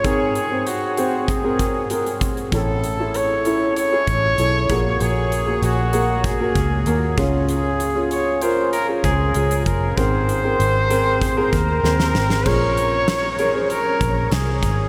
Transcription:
<<
  \new Staff \with { instrumentName = "Trumpet" } { \time 4/4 \key aes \mixolydian \tempo 4 = 97 aes'4 ges'4 aes'4. r8 | a'4 cis''4 cis''2 | aes'4 ges'4 aes'4. r8 | aes'4 des''8 c''8 bes'8 aes'4 bes'8 |
c''2~ c''8 bes'4. | des''2 bes'4 aes'4 | }
  \new Staff \with { instrumentName = "Upright piano" } { \time 4/4 \key aes \mixolydian <c' aes' bes'>8. <c' aes' c''>8. <c' aes' c''>8. <c' aes' bes'>8. <c' aes' bes'>4 | <cis' e' a'>8. <cis' e' a'>8. <cis' e' a'>8. <cis' e' aes'>8. <cis' e' a'>8 <bes ges' aes'>8~ | <bes ges' aes'>8 r16 <bes ges' aes'>8. <bes ges' aes'>8. <bes ges' bes'>8. <bes ges' bes'>8 <des' f' aes'>8~ | <des' f' aes'>8 r16 <des' f' aes'>8. <des' f' bes'>8. <des' f' aes'>8. <des' f' aes'>4 |
<c' aes' bes'>8. <c' aes' bes'>8. <c' aes' bes'>8. <c' aes' bes'>8. <c' aes' bes'>4 | <des' aes' bes'>4~ <des' aes' bes'>16 r16 <des' aes' bes'>16 <des' aes' c''>4.~ <des' aes' c''>16 r8 | }
  \new Staff \with { instrumentName = "Upright piano" } { \clef bass \time 4/4 \key aes \mixolydian aes,4. r2 r8 | a,4. r2 bes,8~ | bes,4 r2 r8 des8~ | des4 r2. |
aes,4. r2 r8 | bes,4. r2 r8 | }
  \new Staff \with { instrumentName = "Fingered electric bass" } { \clef bass \time 4/4 \key aes \mixolydian r1 | a,,2~ a,,8 a,,8 ces,8 bes,,8 | bes,,4 bes,,4. des,8 ees,8 des,8~ | des,2~ des,8 des,8 des,8 ges,,8 |
aes,,4 aes,,4. ees,8 ees,8 aes,,8 | bes,,2~ bes,,8 bes,,8 c,8 aes,,8 | }
  \new DrumStaff \with { instrumentName = "Drums" } \drummode { \time 4/4 <hh bd>8 hh8 hh8 hh8 <hh bd>8 <hh bd>8 hh16 hh16 <hh bd>16 hh16 | <hh bd>8 hh8 hh8 hh8 hh8 <hh bd>8 hh8 <hh bd>8 | hh8 hh8 hh8 hh8 <hh bd>8 <hh bd>8 hh8 <hh bd>8 | hh8 hh8 hh8 hh8 hh8 <hh bd>8 hh16 hh16 <hh bd>8 |
<hh bd>8 hh8 hh8 hh8 <hh bd>8 <hh bd>8 sn16 sn16 sn16 sn16 | <cymc bd>8 hh8 <hh sn>8 hh8 hh8 <hh bd>8 <hh sn>8 <hh bd>8 | }
>>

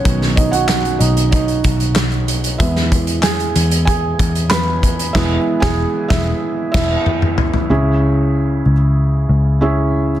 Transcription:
<<
  \new Staff \with { instrumentName = "Felt piano" } { \time 4/4 \key e \major \tempo 4 = 94 <cis' cis''>8 <dis' dis''>16 <fis' fis''>8. <dis' dis''>8 <dis' dis''>4. r8 | <e' e''>4 <gis' gis''>4 <gis' gis''>4 <b' b''>4 | <e gis b e' e''>8 r16 <gis' gis''>8 r16 <e' e''>8 r8 <e' e''>8 r4 | <cis' e' gis' e''>4. r4. <cis' e' gis' e''>8. r16 | }
  \new Staff \with { instrumentName = "Felt piano" } { \clef bass \time 4/4 \key e \major <dis fis b>4. r2 r8 | <e gis b>1 | r1 | cis4. r2 r8 | }
  \new Staff \with { instrumentName = "Picked electric bass" } { \clef bass \time 4/4 \key e \major b,,4. b,,4 b,,4. | e,4. e,4 e,4. | e,,8 r16 e,,8 r16 e,,8 r8 e,,8 r4 | cis,4. cis,4 cis,4. | }
  \new DrumStaff \with { instrumentName = "Drums" } \drummode { \time 4/4 <hh bd>16 sn16 <hh bd>16 hh16 <hc hh sn>16 hh16 hh16 hh16 <hh bd>16 hh16 <hh bd>16 hh16 <hc hh sn>16 hh16 hh16 hh16 | <hh bd>16 sn16 <hh bd>16 hh16 <hc hh sn>16 hh16 hh16 hh16 <hh bd>8 <hh bd>16 hh16 <hc hh sn>8 <hh bd>16 hh16 | <cymc bd sn>8. <bd sn>16 r8 <bd sn>8 r8 <cymc bd sn>8 toml16 toml16 tomfh16 tomfh16 | r4 r4 r4 r4 | }
>>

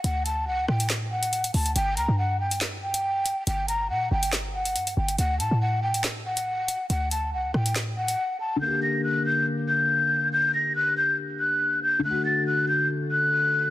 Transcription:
<<
  \new Staff \with { instrumentName = "Flute" } { \time 4/4 \key g \minor \tempo 4 = 140 fis''8 a''8 fis''8 g''8 r8 fis''4 a''8 | g''8 bes''8 fis''8 g''8 r8 g''4. | g''8 bes''8 fis''8 g''8 r8 fis''4 g''8 | fis''8 a''8 fis''8 g''8 r8 fis''4. |
fis''8 a''8 fis''8 g''8 r8 fis''4 a''8 | g'''8 bes'''8 fis'''8 g'''8 r8 g'''4. | g'''8 bes'''8 fis'''8 g'''8 r8 fis'''4 g'''8 | fis'''8 a'''8 fis'''8 g'''8 r8 fis'''4. | }
  \new Staff \with { instrumentName = "Grand piano" } { \time 4/4 \key g \minor r1 | r1 | r1 | r1 |
r1 | <d bes g'>1~ | <d bes g'>1 | <d a fis'>1 | }
  \new Staff \with { instrumentName = "808-style bass" } { \clef bass \time 4/4 \key g \minor d,4 c,16 d,16 a,2 d,8 | g,,8 d,16 g,2. r16 | g,,4 bes,8 g,,4. g,8 g,,8 | d,8 a,16 a,2. r16 |
d,4 c,16 d,16 a,4. r4 | r1 | r1 | r1 | }
  \new DrumStaff \with { instrumentName = "Drums" } \drummode { \time 4/4 hh8 hh8 r8 ss16 hh16 <hc hh sn>8. hh16 hh16 hh16 hho16 hh16 | hh8 hh8 r8. hh16 <hc hh sn>8. hh16 r8 hh8 | hh8 hh8 r8. hh16 <hc hh sn>8. hh16 hh16 hh8 hh16 | hh8 hh8 r8. hh16 <hc hh sn>8. hh16 r8 hh8 |
hh8 hh8 r8 ss16 hh16 <hc hh sn>8. hh16 r4 | r4 r4 r4 r4 | r4 r4 r4 r4 | r4 r4 r4 r4 | }
>>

